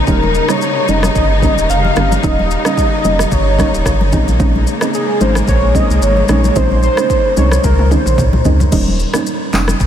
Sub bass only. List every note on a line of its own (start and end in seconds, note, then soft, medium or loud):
0.07 0.40 D#1 loud
0.88 1.10 F1 loud
1.16 1.48 G1 loud
1.57 1.67 D#1 medium
1.70 1.91 F1 loud
1.97 2.18 G1 medium
2.24 2.56 D#1 loud
3.05 3.26 F1 medium
3.32 3.64 G1 loud
3.74 3.83 D#1 medium
3.86 4.15 G1 medium
4.13 4.67 A#1 loud
5.21 5.42 G#1 medium
5.48 5.81 A#1 loud
5.90 5.99 C2 medium
6.02 6.23 G#1 loud
6.29 6.50 A#1 medium
6.56 6.89 A#1 loud
7.37 7.58 C2 medium
7.64 7.97 C#2 loud
8.06 8.15 A#1 medium
8.18 8.39 C2 medium
8.45 8.66 C#2 loud
8.72 9.05 D#1 loud
9.53 9.74 F1 medium
9.80 9.87 G1 loud